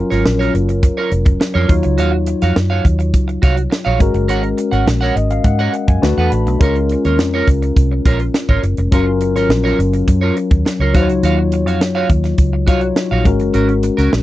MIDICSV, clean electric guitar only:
0, 0, Header, 1, 3, 480
1, 0, Start_track
1, 0, Tempo, 578035
1, 1647, Time_signature, 4, 2, 24, 8
1, 11815, End_track
2, 0, Start_track
2, 0, Title_t, "Clean electric guitar"
2, 0, Program_c, 0, 27
2, 87, Note_on_c, 0, 73, 63
2, 94, Note_on_c, 0, 70, 52
2, 101, Note_on_c, 0, 65, 52
2, 195, Note_off_c, 0, 65, 0
2, 202, Note_off_c, 0, 70, 0
2, 202, Note_off_c, 0, 73, 0
2, 326, Note_on_c, 0, 73, 79
2, 335, Note_on_c, 0, 70, 68
2, 340, Note_on_c, 0, 65, 64
2, 439, Note_off_c, 0, 65, 0
2, 446, Note_off_c, 0, 70, 0
2, 450, Note_off_c, 0, 73, 0
2, 808, Note_on_c, 0, 73, 73
2, 814, Note_on_c, 0, 70, 60
2, 822, Note_on_c, 0, 65, 52
2, 916, Note_off_c, 0, 65, 0
2, 923, Note_off_c, 0, 70, 0
2, 926, Note_off_c, 0, 73, 0
2, 1279, Note_on_c, 0, 73, 75
2, 1287, Note_on_c, 0, 70, 77
2, 1293, Note_on_c, 0, 65, 71
2, 1398, Note_off_c, 0, 70, 0
2, 1399, Note_off_c, 0, 73, 0
2, 1436, Note_off_c, 0, 65, 0
2, 1642, Note_on_c, 0, 66, 71
2, 1652, Note_on_c, 0, 73, 74
2, 1658, Note_on_c, 0, 77, 77
2, 1751, Note_off_c, 0, 77, 0
2, 1759, Note_off_c, 0, 73, 0
2, 1791, Note_off_c, 0, 66, 0
2, 2010, Note_on_c, 0, 77, 57
2, 2015, Note_on_c, 0, 73, 47
2, 2023, Note_on_c, 0, 66, 46
2, 2116, Note_off_c, 0, 66, 0
2, 2121, Note_off_c, 0, 73, 0
2, 2123, Note_off_c, 0, 77, 0
2, 2241, Note_on_c, 0, 77, 73
2, 2247, Note_on_c, 0, 73, 70
2, 2254, Note_on_c, 0, 66, 59
2, 2353, Note_off_c, 0, 66, 0
2, 2360, Note_off_c, 0, 73, 0
2, 2364, Note_off_c, 0, 77, 0
2, 2840, Note_on_c, 0, 66, 70
2, 2852, Note_on_c, 0, 73, 78
2, 2855, Note_on_c, 0, 77, 82
2, 2952, Note_off_c, 0, 77, 0
2, 2958, Note_off_c, 0, 73, 0
2, 2989, Note_off_c, 0, 66, 0
2, 3195, Note_on_c, 0, 77, 74
2, 3203, Note_on_c, 0, 73, 71
2, 3209, Note_on_c, 0, 66, 57
2, 3319, Note_off_c, 0, 73, 0
2, 3322, Note_off_c, 0, 66, 0
2, 3330, Note_off_c, 0, 77, 0
2, 3557, Note_on_c, 0, 70, 71
2, 3564, Note_on_c, 0, 73, 70
2, 3571, Note_on_c, 0, 78, 65
2, 3668, Note_off_c, 0, 78, 0
2, 3678, Note_off_c, 0, 73, 0
2, 3707, Note_off_c, 0, 70, 0
2, 3916, Note_on_c, 0, 78, 56
2, 3928, Note_on_c, 0, 73, 48
2, 3932, Note_on_c, 0, 70, 49
2, 4030, Note_off_c, 0, 70, 0
2, 4035, Note_off_c, 0, 78, 0
2, 4037, Note_off_c, 0, 73, 0
2, 4158, Note_on_c, 0, 78, 83
2, 4168, Note_on_c, 0, 73, 76
2, 4171, Note_on_c, 0, 70, 75
2, 4277, Note_off_c, 0, 70, 0
2, 4283, Note_off_c, 0, 73, 0
2, 4286, Note_off_c, 0, 78, 0
2, 4642, Note_on_c, 0, 78, 77
2, 4649, Note_on_c, 0, 73, 74
2, 4657, Note_on_c, 0, 70, 60
2, 4753, Note_off_c, 0, 70, 0
2, 4759, Note_off_c, 0, 73, 0
2, 4765, Note_off_c, 0, 78, 0
2, 5130, Note_on_c, 0, 78, 71
2, 5140, Note_on_c, 0, 71, 67
2, 5145, Note_on_c, 0, 69, 57
2, 5238, Note_off_c, 0, 69, 0
2, 5245, Note_off_c, 0, 71, 0
2, 5248, Note_off_c, 0, 78, 0
2, 5493, Note_on_c, 0, 65, 65
2, 5500, Note_on_c, 0, 70, 69
2, 5508, Note_on_c, 0, 73, 81
2, 5609, Note_off_c, 0, 73, 0
2, 5617, Note_off_c, 0, 70, 0
2, 5635, Note_off_c, 0, 65, 0
2, 5855, Note_on_c, 0, 73, 56
2, 5862, Note_on_c, 0, 70, 49
2, 5870, Note_on_c, 0, 65, 47
2, 5964, Note_off_c, 0, 73, 0
2, 5965, Note_off_c, 0, 65, 0
2, 5968, Note_off_c, 0, 70, 0
2, 6094, Note_on_c, 0, 73, 82
2, 6103, Note_on_c, 0, 70, 69
2, 6107, Note_on_c, 0, 65, 69
2, 6206, Note_off_c, 0, 65, 0
2, 6211, Note_off_c, 0, 70, 0
2, 6217, Note_off_c, 0, 73, 0
2, 6690, Note_on_c, 0, 65, 70
2, 6697, Note_on_c, 0, 70, 78
2, 6702, Note_on_c, 0, 73, 79
2, 6801, Note_off_c, 0, 73, 0
2, 6811, Note_off_c, 0, 70, 0
2, 6833, Note_off_c, 0, 65, 0
2, 7048, Note_on_c, 0, 73, 72
2, 7053, Note_on_c, 0, 70, 72
2, 7062, Note_on_c, 0, 65, 57
2, 7156, Note_off_c, 0, 65, 0
2, 7163, Note_off_c, 0, 70, 0
2, 7167, Note_off_c, 0, 73, 0
2, 7410, Note_on_c, 0, 65, 67
2, 7418, Note_on_c, 0, 70, 76
2, 7423, Note_on_c, 0, 73, 79
2, 7517, Note_off_c, 0, 73, 0
2, 7525, Note_off_c, 0, 70, 0
2, 7554, Note_off_c, 0, 65, 0
2, 7770, Note_on_c, 0, 73, 60
2, 7781, Note_on_c, 0, 70, 58
2, 7785, Note_on_c, 0, 65, 47
2, 7882, Note_off_c, 0, 65, 0
2, 7882, Note_off_c, 0, 73, 0
2, 7887, Note_off_c, 0, 70, 0
2, 8004, Note_on_c, 0, 73, 84
2, 8013, Note_on_c, 0, 70, 78
2, 8019, Note_on_c, 0, 65, 64
2, 8120, Note_off_c, 0, 65, 0
2, 8127, Note_off_c, 0, 70, 0
2, 8133, Note_off_c, 0, 73, 0
2, 8482, Note_on_c, 0, 73, 81
2, 8489, Note_on_c, 0, 70, 68
2, 8495, Note_on_c, 0, 65, 67
2, 8597, Note_off_c, 0, 65, 0
2, 8603, Note_off_c, 0, 70, 0
2, 8608, Note_off_c, 0, 73, 0
2, 8972, Note_on_c, 0, 73, 52
2, 8980, Note_on_c, 0, 70, 52
2, 8986, Note_on_c, 0, 65, 47
2, 9083, Note_off_c, 0, 73, 0
2, 9087, Note_off_c, 0, 70, 0
2, 9090, Note_off_c, 0, 65, 0
2, 9090, Note_on_c, 0, 66, 80
2, 9099, Note_on_c, 0, 73, 78
2, 9105, Note_on_c, 0, 77, 82
2, 9202, Note_off_c, 0, 77, 0
2, 9214, Note_off_c, 0, 73, 0
2, 9234, Note_off_c, 0, 66, 0
2, 9329, Note_on_c, 0, 66, 70
2, 9339, Note_on_c, 0, 73, 69
2, 9344, Note_on_c, 0, 77, 74
2, 9446, Note_off_c, 0, 77, 0
2, 9457, Note_off_c, 0, 73, 0
2, 9474, Note_off_c, 0, 66, 0
2, 9691, Note_on_c, 0, 77, 49
2, 9698, Note_on_c, 0, 73, 47
2, 9700, Note_on_c, 0, 66, 41
2, 9798, Note_off_c, 0, 66, 0
2, 9803, Note_off_c, 0, 77, 0
2, 9807, Note_off_c, 0, 73, 0
2, 9923, Note_on_c, 0, 77, 87
2, 9930, Note_on_c, 0, 73, 86
2, 9937, Note_on_c, 0, 66, 67
2, 10034, Note_off_c, 0, 66, 0
2, 10036, Note_off_c, 0, 73, 0
2, 10042, Note_off_c, 0, 77, 0
2, 10518, Note_on_c, 0, 66, 74
2, 10525, Note_on_c, 0, 73, 89
2, 10534, Note_on_c, 0, 77, 98
2, 10638, Note_off_c, 0, 77, 0
2, 10648, Note_off_c, 0, 73, 0
2, 10669, Note_off_c, 0, 66, 0
2, 10888, Note_on_c, 0, 77, 62
2, 10897, Note_on_c, 0, 73, 62
2, 10902, Note_on_c, 0, 66, 55
2, 11008, Note_off_c, 0, 66, 0
2, 11019, Note_off_c, 0, 73, 0
2, 11034, Note_off_c, 0, 77, 0
2, 11242, Note_on_c, 0, 61, 65
2, 11248, Note_on_c, 0, 66, 67
2, 11255, Note_on_c, 0, 70, 70
2, 11355, Note_off_c, 0, 70, 0
2, 11366, Note_off_c, 0, 66, 0
2, 11392, Note_off_c, 0, 61, 0
2, 11603, Note_on_c, 0, 70, 61
2, 11611, Note_on_c, 0, 66, 50
2, 11620, Note_on_c, 0, 61, 44
2, 11720, Note_off_c, 0, 61, 0
2, 11720, Note_off_c, 0, 70, 0
2, 11721, Note_off_c, 0, 66, 0
2, 11815, End_track
3, 0, Start_track
3, 0, Title_t, "Muted clean electric guitar strokes"
3, 205, Note_on_c, 9, 29, 44
3, 288, Note_off_c, 9, 29, 0
3, 448, Note_on_c, 9, 29, 33
3, 532, Note_off_c, 9, 29, 0
3, 572, Note_on_c, 9, 29, 39
3, 655, Note_off_c, 9, 29, 0
3, 691, Note_on_c, 9, 29, 32
3, 774, Note_off_c, 9, 29, 0
3, 926, Note_on_c, 9, 29, 36
3, 1009, Note_off_c, 9, 29, 0
3, 1042, Note_on_c, 9, 29, 45
3, 1125, Note_off_c, 9, 29, 0
3, 1164, Note_on_c, 9, 29, 36
3, 1247, Note_off_c, 9, 29, 0
3, 1402, Note_on_c, 9, 29, 37
3, 1485, Note_off_c, 9, 29, 0
3, 1521, Note_on_c, 9, 29, 50
3, 1604, Note_off_c, 9, 29, 0
3, 1761, Note_on_c, 9, 29, 40
3, 1844, Note_off_c, 9, 29, 0
3, 1885, Note_on_c, 9, 29, 32
3, 1968, Note_off_c, 9, 29, 0
3, 2126, Note_on_c, 9, 29, 41
3, 2209, Note_off_c, 9, 29, 0
3, 2363, Note_on_c, 9, 29, 39
3, 2446, Note_off_c, 9, 29, 0
3, 2482, Note_on_c, 9, 29, 41
3, 2565, Note_off_c, 9, 29, 0
3, 2722, Note_on_c, 9, 29, 47
3, 2805, Note_off_c, 9, 29, 0
3, 2962, Note_on_c, 9, 29, 44
3, 3045, Note_off_c, 9, 29, 0
3, 3074, Note_on_c, 9, 29, 40
3, 3157, Note_off_c, 9, 29, 0
3, 3444, Note_on_c, 9, 29, 31
3, 3527, Note_off_c, 9, 29, 0
3, 3678, Note_on_c, 9, 29, 47
3, 3761, Note_off_c, 9, 29, 0
3, 3800, Note_on_c, 9, 29, 32
3, 3883, Note_off_c, 9, 29, 0
3, 4040, Note_on_c, 9, 29, 44
3, 4123, Note_off_c, 9, 29, 0
3, 4287, Note_on_c, 9, 29, 37
3, 4370, Note_off_c, 9, 29, 0
3, 4409, Note_on_c, 9, 29, 43
3, 4492, Note_off_c, 9, 29, 0
3, 4527, Note_on_c, 9, 29, 43
3, 4610, Note_off_c, 9, 29, 0
3, 4763, Note_on_c, 9, 29, 38
3, 4846, Note_off_c, 9, 29, 0
3, 4889, Note_on_c, 9, 29, 40
3, 4972, Note_off_c, 9, 29, 0
3, 5011, Note_on_c, 9, 29, 36
3, 5094, Note_off_c, 9, 29, 0
3, 5372, Note_on_c, 9, 29, 39
3, 5455, Note_off_c, 9, 29, 0
3, 5619, Note_on_c, 9, 29, 38
3, 5702, Note_off_c, 9, 29, 0
3, 5741, Note_on_c, 9, 29, 31
3, 5824, Note_off_c, 9, 29, 0
3, 5975, Note_on_c, 9, 29, 43
3, 6058, Note_off_c, 9, 29, 0
3, 6331, Note_on_c, 9, 29, 51
3, 6414, Note_off_c, 9, 29, 0
3, 6573, Note_on_c, 9, 29, 36
3, 6656, Note_off_c, 9, 29, 0
3, 6811, Note_on_c, 9, 29, 42
3, 6894, Note_off_c, 9, 29, 0
3, 6933, Note_on_c, 9, 29, 38
3, 7016, Note_off_c, 9, 29, 0
3, 7166, Note_on_c, 9, 29, 37
3, 7249, Note_off_c, 9, 29, 0
3, 7294, Note_on_c, 9, 29, 41
3, 7377, Note_off_c, 9, 29, 0
3, 7527, Note_on_c, 9, 29, 43
3, 7610, Note_off_c, 9, 29, 0
3, 7648, Note_on_c, 9, 29, 37
3, 7731, Note_off_c, 9, 29, 0
3, 7892, Note_on_c, 9, 29, 39
3, 7975, Note_off_c, 9, 29, 0
3, 8130, Note_on_c, 9, 29, 35
3, 8213, Note_off_c, 9, 29, 0
3, 8250, Note_on_c, 9, 29, 43
3, 8333, Note_off_c, 9, 29, 0
3, 8373, Note_on_c, 9, 29, 40
3, 8456, Note_off_c, 9, 29, 0
3, 8607, Note_on_c, 9, 29, 40
3, 8690, Note_off_c, 9, 29, 0
3, 8726, Note_on_c, 9, 29, 41
3, 8809, Note_off_c, 9, 29, 0
3, 8849, Note_on_c, 9, 29, 42
3, 8932, Note_off_c, 9, 29, 0
3, 9212, Note_on_c, 9, 29, 37
3, 9295, Note_off_c, 9, 29, 0
3, 9456, Note_on_c, 9, 29, 44
3, 9539, Note_off_c, 9, 29, 0
3, 9575, Note_on_c, 9, 29, 37
3, 9658, Note_off_c, 9, 29, 0
3, 9808, Note_on_c, 9, 29, 43
3, 9891, Note_off_c, 9, 29, 0
3, 10044, Note_on_c, 9, 29, 40
3, 10127, Note_off_c, 9, 29, 0
3, 10164, Note_on_c, 9, 29, 36
3, 10247, Note_off_c, 9, 29, 0
3, 10407, Note_on_c, 9, 29, 42
3, 10491, Note_off_c, 9, 29, 0
3, 10648, Note_on_c, 9, 29, 44
3, 10731, Note_off_c, 9, 29, 0
3, 10771, Note_on_c, 9, 29, 31
3, 10854, Note_off_c, 9, 29, 0
3, 11008, Note_on_c, 9, 29, 40
3, 11091, Note_off_c, 9, 29, 0
3, 11127, Note_on_c, 9, 29, 40
3, 11210, Note_off_c, 9, 29, 0
3, 11365, Note_on_c, 9, 29, 45
3, 11448, Note_off_c, 9, 29, 0
3, 11488, Note_on_c, 9, 29, 41
3, 11571, Note_off_c, 9, 29, 0
3, 11730, Note_on_c, 9, 29, 36
3, 11813, Note_off_c, 9, 29, 0
3, 11815, End_track
0, 0, End_of_file